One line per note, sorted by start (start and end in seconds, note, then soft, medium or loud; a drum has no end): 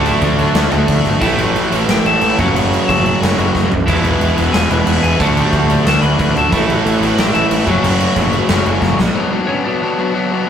0.00 0.10 D2 medium
0.00 0.38 D3 medium
0.00 0.71 D3 medium
0.00 0.38 A3 loud
0.00 0.73 A3 loud
0.00 0.36 D4 loud
0.00 0.71 D4 loud
0.00 0.70 F#4 medium
0.06 0.21 E4 medium
0.06 0.23 E5 medium
0.06 crash medium
0.22 0.43 D2 medium
0.22 0.37 D4 medium
0.22 0.38 D5 medium
0.22 kick medium
0.22 crash medium
0.37 1.20 D3 medium
0.37 1.21 A3 medium
0.37 1.20 D4 loud
0.37 1.01 D4 medium
0.37 1.02 D5 medium
0.37 crash medium
0.55 0.66 D2 loud
0.55 snare loud
0.55 crash medium
0.71 0.83 D2 medium
0.71 0.86 D3 medium
0.71 0.87 A3 medium
0.71 0.88 D4 medium
0.71 0.87 F#4 medium
0.71 crash medium
0.87 0.99 D2 medium
0.87 1.20 D3 medium
0.87 1.23 A3 medium
0.87 1.21 D4 medium
0.87 1.21 F#4 medium
0.87 kick medium
0.87 crash medium
1.05 1.16 G1 medium
1.05 crash medium
1.21 1.32 A1 medium
1.21 1.70 A2 loud
1.21 2.03 A2 loud
1.21 1.70 E3 loud
1.21 2.04 E3 loud
1.21 2.04 A3 medium
1.21 1.70 A3 loud
1.21 2.04 C#4 loud
1.21 1.37 E4 medium
1.21 2.02 E4 loud
1.21 1.39 E5 medium
1.21 kick loud
1.21 crash medium
1.38 1.49 A1 medium
1.38 1.85 F#4 medium
1.38 1.89 F#5 loud
1.38 crash medium
1.54 1.65 A1 medium
1.54 crash medium
1.71 1.83 A1 medium
1.71 2.38 A2 medium
1.71 2.38 E3 medium
1.71 2.36 A3 medium
1.71 crash medium
1.88 1.99 A1 medium
1.88 2.05 G4 medium
1.88 2.06 G5 loud
1.88 snare loud
1.88 crash medium
2.03 2.15 A1 medium
2.03 2.19 A2 medium
2.03 2.20 E3 medium
2.03 2.21 A3 medium
2.03 2.20 C#4 medium
2.03 2.20 E4 medium
2.03 2.36 A4 medium
2.03 2.36 A5 loud
2.03 crash medium
2.21 2.32 A1 medium
2.21 2.36 A2 medium
2.21 2.37 E3 medium
2.21 2.37 A3 medium
2.21 2.38 C#4 medium
2.21 2.38 E4 medium
2.21 crash medium
2.37 2.49 F#1 medium
2.37 2.86 F#2 medium
2.37 2.87 C#3 medium
2.37 3.20 F#3 medium
2.37 2.88 F#3 loud
2.37 3.20 A3 medium
2.37 3.20 C#4 loud
2.37 2.54 F#4 medium
2.37 3.21 F#4 loud
2.37 2.54 F#5 medium
2.37 kick loud
2.37 crash medium
2.54 2.76 F#1 loud
2.54 2.86 F#4 medium
2.54 2.89 F#5 medium
2.54 crash medium
2.73 crash medium
2.88 3.10 F#1 medium
2.88 3.69 F#2 medium
2.88 3.70 C#3 medium
2.88 3.71 F#3 medium
2.88 3.19 A4 medium
2.88 3.18 A5 loud
2.88 kick medium
2.88 crash medium
3.06 crash medium
3.21 3.32 F#1 medium
3.21 3.36 F#3 medium
3.21 3.37 A3 medium
3.21 3.37 C#4 medium
3.21 3.37 F#4 medium
3.21 snare loud
3.21 crash medium
3.38 3.48 F#1 medium
3.38 3.71 F#3 medium
3.38 3.71 A3 medium
3.38 3.70 C#4 medium
3.38 3.70 F#4 medium
3.38 crash medium
3.55 3.65 F#1 medium
3.55 kick medium
3.55 snare medium
3.71 3.81 F#1 medium
3.71 floor tom medium
3.86 3.98 E1 loud
3.86 4.35 E2 medium
3.86 4.36 B2 loud
3.86 4.68 E3 medium
3.86 4.35 E3 medium
3.86 4.69 G#3 medium
3.86 4.70 B3 medium
3.86 4.02 E4 medium
3.86 4.69 E4 loud
3.86 4.04 E5 loud
3.86 kick loud
3.86 crash medium
4.03 4.14 E1 medium
4.03 4.50 F#4 medium
4.03 4.55 F#5 medium
4.03 crash medium
4.19 4.30 E1 medium
4.19 crash medium
4.36 4.47 E1 medium
4.36 5.20 E2 medium
4.36 5.19 B2 medium
4.36 5.18 E3 medium
4.36 crash medium
4.53 4.64 E1 medium
4.53 4.68 G#4 medium
4.53 4.70 G#5 loud
4.53 snare loud
4.53 crash medium
4.69 4.80 E1 medium
4.69 4.86 G#3 medium
4.69 4.86 B3 medium
4.69 4.85 E4 medium
4.69 5.00 B4 medium
4.69 5.02 B5 loud
4.69 crash medium
4.73 4.84 E3 medium
4.86 4.97 E1 medium
4.86 5.18 E3 medium
4.86 5.19 G#3 medium
4.86 5.19 B3 medium
4.86 5.20 E4 medium
4.86 crash medium
5.02 5.13 E1 medium
5.02 5.18 G#4 medium
5.02 5.18 G#5 loud
5.02 crash medium
5.19 5.41 D2 loud
5.19 6.01 D3 medium
5.19 5.68 D3 medium
5.19 6.02 A3 loud
5.19 5.69 A3 loud
5.19 6.01 D4 medium
5.19 5.67 D4 loud
5.19 5.35 F#4 medium
5.19 6.00 F#4 loud
5.19 5.38 F#5 loud
5.19 kick loud
5.19 crash medium
5.37 5.83 G4 medium
5.37 5.88 G5 medium
5.37 crash medium
5.53 5.74 D2 medium
5.53 kick medium
5.53 crash medium
5.68 6.50 D3 medium
5.68 6.51 A3 medium
5.68 6.50 D4 medium
5.68 crash medium
5.85 5.96 D2 medium
5.85 6.02 A4 medium
5.85 6.01 A5 medium
5.85 snare loud
5.85 crash medium
6.01 6.13 D2 medium
6.01 6.17 D3 medium
6.01 6.19 A3 medium
6.01 6.18 D4 medium
6.01 6.17 F#4 medium
6.01 6.32 B4 medium
6.01 6.36 B5 loud
6.01 crash medium
6.18 6.30 D2 medium
6.18 6.50 D3 medium
6.18 6.53 A3 medium
6.18 6.52 D4 medium
6.18 6.52 F#4 medium
6.18 kick medium
6.18 crash medium
6.36 6.46 D2 medium
6.36 6.52 A4 medium
6.36 6.52 A5 medium
6.36 crash medium
6.51 6.63 A1 loud
6.51 7.00 A2 loud
6.51 7.33 A2 loud
6.51 7.00 E3 loud
6.51 7.33 E3 medium
6.51 7.34 A3 loud
6.51 6.99 A3 loud
6.51 7.34 C#4 loud
6.51 6.68 E4 medium
6.51 6.71 E5 loud
6.51 kick loud
6.51 crash medium
6.55 7.32 E4 loud
6.67 6.78 A1 medium
6.67 7.16 F#4 medium
6.67 7.19 F#5 medium
6.67 crash medium
6.85 6.95 A1 medium
6.85 crash medium
6.99 7.12 A1 medium
6.99 7.66 A2 medium
6.99 7.66 E3 medium
6.99 7.65 A3 medium
6.99 crash medium
7.17 7.28 A1 loud
7.17 7.33 G4 medium
7.17 7.34 G5 medium
7.17 snare loud
7.17 crash medium
7.33 7.45 A1 medium
7.33 7.49 A2 medium
7.33 7.50 E3 medium
7.33 7.50 A3 medium
7.33 7.50 C#4 medium
7.33 7.49 E4 medium
7.33 7.49 A4 medium
7.33 7.48 A5 medium
7.33 crash medium
7.49 7.61 A1 medium
7.49 7.66 A2 medium
7.49 7.66 E3 medium
7.49 7.67 A3 medium
7.49 7.67 C#4 medium
7.49 7.65 E4 medium
7.49 7.67 E5 medium
7.49 crash medium
7.53 7.68 E4 medium
7.64 7.78 F#1 medium
7.64 8.14 F#2 medium
7.64 8.15 C#3 loud
7.64 8.48 F#3 medium
7.64 8.16 F#3 loud
7.64 8.78 F#4 medium
7.64 8.82 F#5 medium
7.64 kick medium
7.64 crash medium
7.69 8.49 A3 loud
7.69 8.49 C#4 loud
7.69 8.50 F#4 loud
7.83 8.04 F#1 medium
7.83 crash medium
8.00 crash medium
8.15 8.37 F#1 medium
8.15 8.97 F#2 medium
8.15 8.98 C#3 medium
8.15 8.99 F#3 medium
8.15 kick medium
8.15 crash medium
8.33 crash medium
8.49 8.60 F#1 medium
8.49 8.65 F#3 medium
8.49 8.65 A3 medium
8.49 8.66 C#4 medium
8.49 8.65 F#4 medium
8.49 snare loud
8.49 crash medium
8.65 8.76 F#1 medium
8.65 8.99 F#3 medium
8.65 8.99 A3 medium
8.65 8.98 C#4 medium
8.65 8.98 F#4 medium
8.65 crash medium
8.82 8.93 F#1 medium
8.82 kick medium
8.82 snare medium
8.99 9.09 A#1 medium
8.99 snare medium
9.15 9.32 B2 loud
9.15 9.32 F#3 loud
9.15 9.31 B3 loud
9.15 9.30 D4 loud
9.31 9.48 B2 medium
9.31 9.48 F#3 medium
9.31 9.49 B3 loud
9.31 9.49 D4 loud
9.47 9.66 B2 medium
9.47 9.65 F#3 medium
9.47 9.66 B3 loud
9.47 9.64 C#4 loud
9.47 9.65 D4 loud
9.47 9.63 C#5 medium
9.64 9.81 B2 medium
9.64 9.83 F#3 medium
9.64 9.82 B3 medium
9.64 9.83 D4 medium
9.64 9.99 D4 loud
9.64 9.95 D5 medium
9.82 9.98 B2 medium
9.82 9.99 F#3 medium
9.82 9.98 B3 loud
9.82 9.97 D4 loud
9.97 10.13 B2 medium
9.97 10.43 F#3 medium
9.97 10.14 F#3 medium
9.97 10.14 B3 medium
9.97 10.15 D4 medium
9.97 10.44 F#4 loud
10.14 10.31 B2 medium
10.14 10.32 F#3 medium
10.14 10.30 B3 medium
10.14 10.31 D4 loud
10.31 10.45 B2 medium
10.31 10.47 F#3 medium
10.31 10.47 B3 loud
10.31 10.48 D4 loud